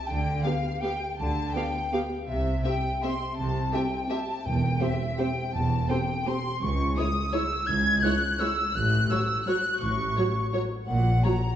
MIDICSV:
0, 0, Header, 1, 8, 480
1, 0, Start_track
1, 0, Tempo, 367647
1, 112, Time_signature, 3, 2, 24, 8
1, 3959, Tempo, 357782
1, 15394, End_track
2, 0, Start_track
2, 0, Title_t, "Flute"
2, 0, Program_c, 0, 73
2, 89, Note_on_c, 0, 79, 76
2, 566, Note_on_c, 0, 77, 71
2, 585, Note_off_c, 0, 79, 0
2, 1057, Note_on_c, 0, 79, 75
2, 1076, Note_off_c, 0, 77, 0
2, 1534, Note_off_c, 0, 79, 0
2, 1542, Note_on_c, 0, 81, 76
2, 2006, Note_on_c, 0, 79, 69
2, 2025, Note_off_c, 0, 81, 0
2, 2604, Note_off_c, 0, 79, 0
2, 2980, Note_on_c, 0, 76, 74
2, 3427, Note_off_c, 0, 76, 0
2, 3465, Note_on_c, 0, 79, 74
2, 3959, Note_on_c, 0, 84, 78
2, 3979, Note_off_c, 0, 79, 0
2, 4414, Note_off_c, 0, 84, 0
2, 4422, Note_on_c, 0, 81, 81
2, 4918, Note_on_c, 0, 79, 66
2, 4939, Note_off_c, 0, 81, 0
2, 5408, Note_on_c, 0, 81, 74
2, 5428, Note_off_c, 0, 79, 0
2, 5876, Note_on_c, 0, 79, 75
2, 5896, Note_off_c, 0, 81, 0
2, 6357, Note_on_c, 0, 76, 73
2, 6377, Note_off_c, 0, 79, 0
2, 6853, Note_on_c, 0, 79, 80
2, 6874, Note_off_c, 0, 76, 0
2, 7322, Note_off_c, 0, 79, 0
2, 7330, Note_on_c, 0, 81, 79
2, 7800, Note_on_c, 0, 79, 77
2, 7820, Note_off_c, 0, 81, 0
2, 8309, Note_on_c, 0, 84, 88
2, 8329, Note_off_c, 0, 79, 0
2, 8785, Note_on_c, 0, 85, 83
2, 8805, Note_off_c, 0, 84, 0
2, 9251, Note_on_c, 0, 87, 82
2, 9271, Note_off_c, 0, 85, 0
2, 9742, Note_on_c, 0, 88, 89
2, 9762, Note_off_c, 0, 87, 0
2, 10178, Note_on_c, 0, 92, 96
2, 10198, Note_off_c, 0, 88, 0
2, 10663, Note_on_c, 0, 90, 90
2, 10683, Note_off_c, 0, 92, 0
2, 11161, Note_on_c, 0, 88, 88
2, 11181, Note_off_c, 0, 90, 0
2, 11635, Note_on_c, 0, 90, 89
2, 11655, Note_off_c, 0, 88, 0
2, 12084, Note_off_c, 0, 90, 0
2, 12092, Note_on_c, 0, 88, 84
2, 12603, Note_on_c, 0, 90, 95
2, 12623, Note_off_c, 0, 88, 0
2, 13061, Note_off_c, 0, 90, 0
2, 13070, Note_on_c, 0, 85, 89
2, 14009, Note_off_c, 0, 85, 0
2, 14485, Note_on_c, 0, 78, 83
2, 14965, Note_on_c, 0, 82, 81
2, 14985, Note_off_c, 0, 78, 0
2, 15394, Note_off_c, 0, 82, 0
2, 15394, End_track
3, 0, Start_track
3, 0, Title_t, "Violin section"
3, 0, Program_c, 1, 48
3, 105, Note_on_c, 1, 79, 67
3, 572, Note_on_c, 1, 77, 59
3, 583, Note_off_c, 1, 79, 0
3, 1059, Note_on_c, 1, 79, 59
3, 1071, Note_off_c, 1, 77, 0
3, 1532, Note_on_c, 1, 81, 69
3, 1533, Note_off_c, 1, 79, 0
3, 1998, Note_on_c, 1, 79, 60
3, 2007, Note_off_c, 1, 81, 0
3, 2742, Note_off_c, 1, 79, 0
3, 2973, Note_on_c, 1, 76, 64
3, 3424, Note_off_c, 1, 76, 0
3, 3431, Note_on_c, 1, 79, 65
3, 3932, Note_off_c, 1, 79, 0
3, 3972, Note_on_c, 1, 84, 61
3, 4420, Note_on_c, 1, 81, 70
3, 4428, Note_off_c, 1, 84, 0
3, 4896, Note_off_c, 1, 81, 0
3, 4911, Note_on_c, 1, 79, 58
3, 5402, Note_on_c, 1, 81, 67
3, 5408, Note_off_c, 1, 79, 0
3, 5855, Note_on_c, 1, 79, 67
3, 5872, Note_off_c, 1, 81, 0
3, 6337, Note_on_c, 1, 76, 64
3, 6340, Note_off_c, 1, 79, 0
3, 6842, Note_off_c, 1, 76, 0
3, 6859, Note_on_c, 1, 79, 63
3, 7318, Note_on_c, 1, 81, 71
3, 7330, Note_off_c, 1, 79, 0
3, 7803, Note_off_c, 1, 81, 0
3, 7804, Note_on_c, 1, 79, 63
3, 8298, Note_on_c, 1, 84, 72
3, 8299, Note_off_c, 1, 79, 0
3, 8771, Note_on_c, 1, 85, 74
3, 8773, Note_off_c, 1, 84, 0
3, 9237, Note_off_c, 1, 85, 0
3, 9248, Note_on_c, 1, 87, 73
3, 9722, Note_off_c, 1, 87, 0
3, 9723, Note_on_c, 1, 88, 76
3, 10186, Note_on_c, 1, 92, 80
3, 10194, Note_off_c, 1, 88, 0
3, 10667, Note_off_c, 1, 92, 0
3, 10669, Note_on_c, 1, 90, 74
3, 11156, Note_off_c, 1, 90, 0
3, 11160, Note_on_c, 1, 88, 79
3, 11632, Note_off_c, 1, 88, 0
3, 11645, Note_on_c, 1, 90, 82
3, 12104, Note_on_c, 1, 88, 77
3, 12112, Note_off_c, 1, 90, 0
3, 12588, Note_on_c, 1, 90, 73
3, 12594, Note_off_c, 1, 88, 0
3, 13044, Note_off_c, 1, 90, 0
3, 13056, Note_on_c, 1, 85, 76
3, 14021, Note_off_c, 1, 85, 0
3, 14475, Note_on_c, 1, 78, 70
3, 14932, Note_off_c, 1, 78, 0
3, 14978, Note_on_c, 1, 82, 64
3, 15394, Note_off_c, 1, 82, 0
3, 15394, End_track
4, 0, Start_track
4, 0, Title_t, "Violin section"
4, 0, Program_c, 2, 48
4, 586, Note_on_c, 2, 77, 46
4, 690, Note_off_c, 2, 77, 0
4, 1081, Note_on_c, 2, 77, 44
4, 1185, Note_off_c, 2, 77, 0
4, 2042, Note_on_c, 2, 77, 47
4, 2147, Note_off_c, 2, 77, 0
4, 2519, Note_on_c, 2, 77, 43
4, 2623, Note_off_c, 2, 77, 0
4, 3467, Note_on_c, 2, 76, 46
4, 3571, Note_off_c, 2, 76, 0
4, 3954, Note_on_c, 2, 76, 47
4, 4061, Note_off_c, 2, 76, 0
4, 4899, Note_on_c, 2, 76, 47
4, 5006, Note_off_c, 2, 76, 0
4, 5396, Note_on_c, 2, 76, 48
4, 5503, Note_off_c, 2, 76, 0
4, 6331, Note_on_c, 2, 72, 47
4, 6438, Note_off_c, 2, 72, 0
4, 6842, Note_on_c, 2, 72, 51
4, 6949, Note_off_c, 2, 72, 0
4, 7789, Note_on_c, 2, 72, 50
4, 7896, Note_off_c, 2, 72, 0
4, 8291, Note_on_c, 2, 72, 51
4, 8398, Note_off_c, 2, 72, 0
4, 9250, Note_on_c, 2, 73, 52
4, 9358, Note_off_c, 2, 73, 0
4, 9717, Note_on_c, 2, 73, 52
4, 9824, Note_off_c, 2, 73, 0
4, 10677, Note_on_c, 2, 73, 51
4, 10784, Note_off_c, 2, 73, 0
4, 11159, Note_on_c, 2, 73, 52
4, 11266, Note_off_c, 2, 73, 0
4, 12121, Note_on_c, 2, 73, 51
4, 12228, Note_off_c, 2, 73, 0
4, 12605, Note_on_c, 2, 73, 50
4, 12712, Note_off_c, 2, 73, 0
4, 13534, Note_on_c, 2, 73, 51
4, 13641, Note_off_c, 2, 73, 0
4, 14026, Note_on_c, 2, 73, 52
4, 14133, Note_off_c, 2, 73, 0
4, 14978, Note_on_c, 2, 73, 49
4, 15085, Note_off_c, 2, 73, 0
4, 15394, End_track
5, 0, Start_track
5, 0, Title_t, "Viola section"
5, 0, Program_c, 3, 48
5, 582, Note_on_c, 3, 59, 47
5, 586, Note_on_c, 3, 67, 49
5, 686, Note_off_c, 3, 59, 0
5, 691, Note_off_c, 3, 67, 0
5, 1079, Note_on_c, 3, 59, 42
5, 1087, Note_on_c, 3, 67, 43
5, 1183, Note_off_c, 3, 59, 0
5, 1191, Note_off_c, 3, 67, 0
5, 2032, Note_on_c, 3, 59, 46
5, 2032, Note_on_c, 3, 67, 49
5, 2136, Note_off_c, 3, 67, 0
5, 2137, Note_off_c, 3, 59, 0
5, 2514, Note_on_c, 3, 67, 44
5, 2519, Note_on_c, 3, 59, 43
5, 2619, Note_off_c, 3, 67, 0
5, 2623, Note_off_c, 3, 59, 0
5, 3462, Note_on_c, 3, 60, 48
5, 3466, Note_on_c, 3, 67, 46
5, 3566, Note_off_c, 3, 60, 0
5, 3570, Note_off_c, 3, 67, 0
5, 3960, Note_on_c, 3, 60, 44
5, 3963, Note_on_c, 3, 67, 47
5, 4067, Note_off_c, 3, 60, 0
5, 4071, Note_off_c, 3, 67, 0
5, 4906, Note_on_c, 3, 67, 49
5, 4911, Note_on_c, 3, 60, 49
5, 5013, Note_off_c, 3, 67, 0
5, 5018, Note_off_c, 3, 60, 0
5, 5386, Note_on_c, 3, 60, 46
5, 5386, Note_on_c, 3, 67, 47
5, 5493, Note_off_c, 3, 60, 0
5, 5494, Note_off_c, 3, 67, 0
5, 6338, Note_on_c, 3, 60, 53
5, 6338, Note_on_c, 3, 67, 52
5, 6445, Note_off_c, 3, 60, 0
5, 6445, Note_off_c, 3, 67, 0
5, 6842, Note_on_c, 3, 67, 46
5, 6848, Note_on_c, 3, 60, 48
5, 6950, Note_off_c, 3, 67, 0
5, 6955, Note_off_c, 3, 60, 0
5, 7800, Note_on_c, 3, 60, 52
5, 7809, Note_on_c, 3, 67, 53
5, 7907, Note_off_c, 3, 60, 0
5, 7916, Note_off_c, 3, 67, 0
5, 8292, Note_on_c, 3, 60, 47
5, 8294, Note_on_c, 3, 67, 47
5, 8399, Note_off_c, 3, 60, 0
5, 8401, Note_off_c, 3, 67, 0
5, 9249, Note_on_c, 3, 56, 53
5, 9252, Note_on_c, 3, 64, 57
5, 9357, Note_off_c, 3, 56, 0
5, 9359, Note_off_c, 3, 64, 0
5, 9739, Note_on_c, 3, 64, 53
5, 9741, Note_on_c, 3, 56, 49
5, 9847, Note_off_c, 3, 64, 0
5, 9848, Note_off_c, 3, 56, 0
5, 10672, Note_on_c, 3, 64, 55
5, 10674, Note_on_c, 3, 56, 55
5, 10779, Note_off_c, 3, 64, 0
5, 10781, Note_off_c, 3, 56, 0
5, 11160, Note_on_c, 3, 64, 52
5, 11168, Note_on_c, 3, 56, 47
5, 11267, Note_off_c, 3, 64, 0
5, 11275, Note_off_c, 3, 56, 0
5, 12104, Note_on_c, 3, 66, 54
5, 12106, Note_on_c, 3, 54, 54
5, 12212, Note_off_c, 3, 66, 0
5, 12214, Note_off_c, 3, 54, 0
5, 12600, Note_on_c, 3, 54, 49
5, 12600, Note_on_c, 3, 66, 48
5, 12707, Note_off_c, 3, 54, 0
5, 12707, Note_off_c, 3, 66, 0
5, 13538, Note_on_c, 3, 54, 50
5, 13538, Note_on_c, 3, 66, 55
5, 13645, Note_off_c, 3, 66, 0
5, 13646, Note_off_c, 3, 54, 0
5, 14023, Note_on_c, 3, 54, 48
5, 14028, Note_on_c, 3, 66, 50
5, 14130, Note_off_c, 3, 54, 0
5, 14135, Note_off_c, 3, 66, 0
5, 14979, Note_on_c, 3, 66, 50
5, 14980, Note_on_c, 3, 54, 51
5, 15086, Note_off_c, 3, 66, 0
5, 15087, Note_off_c, 3, 54, 0
5, 15394, End_track
6, 0, Start_track
6, 0, Title_t, "Cello section"
6, 0, Program_c, 4, 48
6, 115, Note_on_c, 4, 50, 56
6, 506, Note_off_c, 4, 50, 0
6, 1561, Note_on_c, 4, 50, 60
6, 1949, Note_off_c, 4, 50, 0
6, 2986, Note_on_c, 4, 48, 59
6, 3381, Note_off_c, 4, 48, 0
6, 4436, Note_on_c, 4, 48, 62
6, 4830, Note_off_c, 4, 48, 0
6, 5872, Note_on_c, 4, 40, 62
6, 6265, Note_off_c, 4, 40, 0
6, 7330, Note_on_c, 4, 40, 67
6, 7726, Note_off_c, 4, 40, 0
6, 8779, Note_on_c, 4, 37, 70
6, 9169, Note_off_c, 4, 37, 0
6, 10212, Note_on_c, 4, 37, 67
6, 10598, Note_off_c, 4, 37, 0
6, 11649, Note_on_c, 4, 45, 66
6, 12032, Note_off_c, 4, 45, 0
6, 13070, Note_on_c, 4, 45, 65
6, 13451, Note_off_c, 4, 45, 0
6, 14496, Note_on_c, 4, 46, 62
6, 14892, Note_off_c, 4, 46, 0
6, 15394, End_track
7, 0, Start_track
7, 0, Title_t, "Timpani"
7, 0, Program_c, 5, 47
7, 5873, Note_on_c, 5, 40, 67
7, 6548, Note_off_c, 5, 40, 0
7, 15394, End_track
8, 0, Start_track
8, 0, Title_t, "Double bass section"
8, 0, Program_c, 6, 48
8, 116, Note_on_c, 6, 38, 60
8, 507, Note_off_c, 6, 38, 0
8, 1552, Note_on_c, 6, 38, 58
8, 1944, Note_off_c, 6, 38, 0
8, 2989, Note_on_c, 6, 36, 60
8, 3382, Note_off_c, 6, 36, 0
8, 4433, Note_on_c, 6, 36, 63
8, 4828, Note_off_c, 6, 36, 0
8, 5869, Note_on_c, 6, 28, 66
8, 6264, Note_off_c, 6, 28, 0
8, 7326, Note_on_c, 6, 28, 67
8, 7724, Note_off_c, 6, 28, 0
8, 8772, Note_on_c, 6, 37, 67
8, 9166, Note_off_c, 6, 37, 0
8, 10189, Note_on_c, 6, 37, 71
8, 10586, Note_off_c, 6, 37, 0
8, 11643, Note_on_c, 6, 33, 73
8, 12029, Note_off_c, 6, 33, 0
8, 13058, Note_on_c, 6, 33, 71
8, 13445, Note_off_c, 6, 33, 0
8, 14497, Note_on_c, 6, 34, 67
8, 14893, Note_off_c, 6, 34, 0
8, 15394, End_track
0, 0, End_of_file